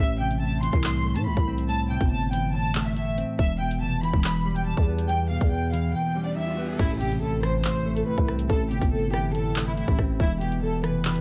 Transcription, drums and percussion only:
0.31 closed hi-hat medium
0.63 closed hi-hat medium
0.73 kick loud
0.84 clap loud
0.84 closed hi-hat medium
1.16 closed hi-hat medium
1.37 kick loud
1.58 closed hi-hat medium
1.69 closed hi-hat medium
2.01 kick loud
2.01 closed hi-hat medium
2.33 closed hi-hat medium
2.75 clap loud
2.86 closed hi-hat medium
2.97 closed hi-hat medium
3.18 closed hi-hat medium
3.39 kick loud
3.39 closed hi-hat medium
3.71 closed hi-hat medium
4.03 closed hi-hat medium
4.13 kick medium
4.24 clap loud
4.24 closed hi-hat medium
4.56 closed hi-hat medium
4.77 kick loud
4.99 closed hi-hat medium
5.09 closed hi-hat medium
5.41 kick loud
5.41 closed hi-hat medium
5.74 closed hi-hat medium
6.79 kick loud
6.79 closed hi-hat medium
6.79 crash loud
7.01 closed hi-hat medium
7.12 closed hi-hat medium
7.43 cross-stick loud
7.43 closed hi-hat medium
7.65 clap loud
7.65 closed hi-hat medium
7.75 closed hi-hat medium
7.96 closed hi-hat medium
8.18 kick loud
8.28 cross-stick loud
8.39 closed hi-hat medium
8.50 kick loud
8.50 closed hi-hat medium
8.71 closed hi-hat medium
8.82 kick loud
8.82 closed hi-hat medium
9.14 cross-stick loud
9.14 closed hi-hat medium
9.35 closed hi-hat medium
9.56 clap loud
9.56 closed hi-hat medium
9.77 closed hi-hat medium
9.88 kick loud
9.99 kick medium
9.99 cross-stick loud
10.20 kick loud
10.20 closed hi-hat medium
10.41 closed hi-hat medium
10.52 closed hi-hat medium
10.84 cross-stick loud
10.84 closed hi-hat medium
11.05 clap loud
11.05 closed hi-hat medium
11.16 closed hi-hat medium

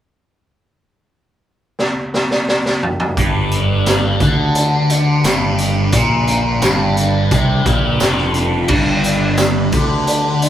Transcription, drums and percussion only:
1.79 snare medium
2.14 snare medium
2.31 snare medium
2.48 snare medium
2.66 snare medium
2.83 mid tom medium
3.00 mid tom loud
3.17 kick loud
3.17 closed hi-hat medium
3.51 closed hi-hat medium
3.86 snare loud
3.86 closed hi-hat loud
3.86 tambourine medium
4.20 kick loud
4.20 closed hi-hat medium
4.55 closed hi-hat medium
4.90 closed hi-hat medium
5.24 snare loud
5.24 closed hi-hat loud
5.24 tambourine medium
5.58 closed hi-hat medium
5.92 kick loud
5.92 closed hi-hat loud
6.27 closed hi-hat medium
6.62 snare loud
6.62 closed hi-hat medium
6.62 tambourine medium
6.97 closed hi-hat medium
7.31 kick loud
7.31 closed hi-hat medium
7.66 kick loud
7.66 closed hi-hat medium
8.00 snare loud
8.00 closed hi-hat medium
8.00 tambourine medium
8.18 snare soft
8.34 closed hi-hat medium
8.68 kick loud
8.68 crash medium
9.04 closed hi-hat medium
9.37 snare loud
9.37 closed hi-hat medium
9.37 tambourine medium
9.72 kick loud
9.72 closed hi-hat medium
10.07 closed hi-hat medium
10.42 closed hi-hat medium

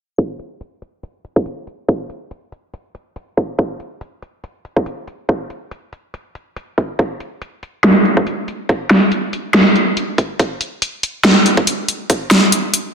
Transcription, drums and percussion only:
0.18 kick loud
0.18 closed hi-hat medium
0.39 closed hi-hat medium
0.61 closed hi-hat medium
0.82 closed hi-hat medium
1.03 closed hi-hat medium
1.25 closed hi-hat medium
1.36 kick loud
1.46 closed hi-hat medium
1.67 closed hi-hat medium
1.88 kick loud
1.88 closed hi-hat medium
2.10 closed hi-hat medium
2.31 closed hi-hat medium
2.52 closed hi-hat medium
2.74 closed hi-hat medium
2.95 closed hi-hat medium
3.16 closed hi-hat medium
3.37 kick medium
3.37 closed hi-hat medium
3.59 kick loud
3.59 closed hi-hat medium
3.80 closed hi-hat soft
4.01 closed hi-hat medium
4.22 closed hi-hat soft
4.44 closed hi-hat medium
4.65 closed hi-hat medium
4.76 kick loud
4.86 closed hi-hat medium
5.08 closed hi-hat medium
5.29 kick loud
5.29 closed hi-hat medium
5.50 closed hi-hat soft
5.71 closed hi-hat medium
5.93 closed hi-hat soft
6.14 closed hi-hat medium
6.35 closed hi-hat medium
6.56 closed hi-hat medium
6.78 kick medium
6.78 closed hi-hat soft
6.99 kick loud
6.99 closed hi-hat medium
7.20 closed hi-hat soft
7.42 closed hi-hat medium
7.63 closed hi-hat soft
7.84 snare loud
7.84 closed hi-hat medium
8.05 closed hi-hat soft
8.17 kick loud
8.27 closed hi-hat medium
8.48 closed hi-hat soft
8.69 kick loud
8.69 closed hi-hat medium
8.91 snare medium
8.91 closed hi-hat soft
9.12 closed hi-hat medium
9.33 closed hi-hat soft
9.54 snare loud
9.54 closed hi-hat medium
9.76 closed hi-hat soft
9.97 closed hi-hat medium
10.18 kick medium
10.18 closed hi-hat soft
10.39 kick loud
10.39 closed hi-hat medium
10.61 closed hi-hat medium
10.82 closed hi-hat medium
11.03 closed hi-hat soft
11.25 snare loud
11.25 closed hi-hat medium
11.46 closed hi-hat medium
11.57 kick loud
11.67 closed hi-hat medium
11.88 closed hi-hat soft
12.10 kick loud
12.10 closed hi-hat medium
12.31 snare medium
12.31 closed hi-hat medium
12.52 closed hi-hat medium
12.74 closed hi-hat medium

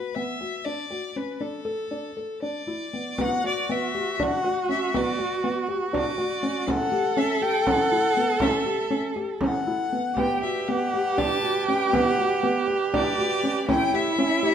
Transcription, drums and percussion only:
3.18 frame drum medium
3.44 frame drum soft
3.70 frame drum soft
4.19 frame drum medium
4.94 frame drum medium
5.20 frame drum soft
5.45 frame drum soft
5.94 frame drum medium
6.68 frame drum medium
6.94 frame drum soft
7.18 frame drum soft
7.67 frame drum medium
8.40 frame drum medium
9.16 frame drum soft
9.41 frame drum medium
10.17 frame drum medium
10.41 frame drum soft
10.68 frame drum soft
11.18 frame drum medium
11.94 frame drum medium
12.19 frame drum soft
12.43 frame drum soft
12.94 frame drum medium
13.69 frame drum medium
13.94 frame drum soft
14.18 frame drum soft

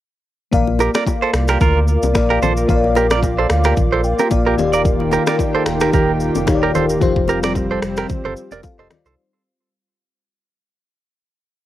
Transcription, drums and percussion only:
0.53 kick loud
0.53 low conga medium
0.53 shaker medium
0.67 high bongo soft
0.79 high bongo medium
0.79 shaker medium
0.94 finger snap medium
0.94 cross-stick loud
0.94 low bongo medium
0.94 shaker medium
1.06 kick medium
1.06 high bongo medium
1.06 shaker medium
1.33 finger snap medium
1.33 cross-stick loud
1.33 shaker medium
1.48 finger snap medium
1.48 cross-stick medium
1.48 shaker medium
1.61 kick loud
1.61 low conga medium
1.61 shaker medium
1.88 shaker soft
2.03 low bongo medium
2.03 shaker medium
2.15 finger snap medium
2.15 kick medium
2.15 cross-stick medium
2.15 high bongo medium
2.15 shaker medium
2.42 low bongo medium
2.42 low conga medium
2.42 shaker soft
2.57 shaker medium
2.69 kick loud
2.69 low conga medium
2.69 shaker medium
2.84 high bongo soft
2.95 high bongo medium
2.95 shaker medium
3.10 finger snap medium
3.10 cross-stick loud
3.10 low bongo medium
3.10 shaker medium
3.23 kick medium
3.23 high bongo medium
3.23 shaker medium
3.50 finger snap medium
3.50 cross-stick loud
3.50 shaker medium
3.64 finger snap medium
3.64 cross-stick loud
3.64 shaker medium
3.77 kick loud
3.77 low conga medium
3.77 shaker medium
4.04 shaker soft
4.19 low bongo medium
4.19 shaker medium
4.31 kick medium
4.31 high bongo medium
4.31 shaker medium
4.58 low bongo medium
4.58 low conga medium
4.58 shaker soft
4.73 shaker medium
4.85 kick loud
4.85 low conga medium
4.85 shaker medium
5.00 high bongo soft
5.11 high bongo medium
5.11 shaker medium
5.27 finger snap medium
5.27 cross-stick loud
5.27 low bongo medium
5.27 shaker medium
5.39 kick medium
5.39 high bongo medium
5.39 shaker medium
5.66 finger snap medium
5.66 cross-stick loud
5.66 shaker medium
5.80 finger snap medium
5.80 cross-stick loud
5.80 shaker medium
5.93 kick loud
5.93 low conga medium
5.93 shaker medium
6.20 shaker soft
6.35 low bongo medium
6.35 shaker medium
6.47 finger snap medium
6.47 kick medium
6.47 cross-stick medium
6.47 high bongo medium
6.47 shaker medium
6.75 low bongo medium
6.75 low conga medium
6.75 shaker soft
6.89 shaker medium
7.01 kick loud
7.01 low conga medium
7.01 shaker medium
7.16 kick medium
7.16 high bongo soft
7.28 high bongo medium
7.28 low bongo medium
7.28 shaker medium
7.43 finger snap medium
7.43 cross-stick loud
7.43 low bongo medium
7.43 shaker medium
7.55 kick medium
7.55 high bongo medium
7.55 shaker medium
7.82 finger snap medium
7.82 cross-stick loud
7.82 shaker medium
7.97 finger snap medium
7.97 cross-stick loud
7.97 shaker medium
8.09 kick loud
8.09 low conga medium
8.09 shaker medium
8.37 shaker medium
8.51 low bongo medium
8.51 shaker medium
8.63 kick medium
8.63 high bongo medium
8.63 shaker medium
8.91 finger snap medium
8.91 cross-stick loud
8.91 low bongo medium
8.91 low conga medium
8.91 shaker soft
9.06 shaker medium

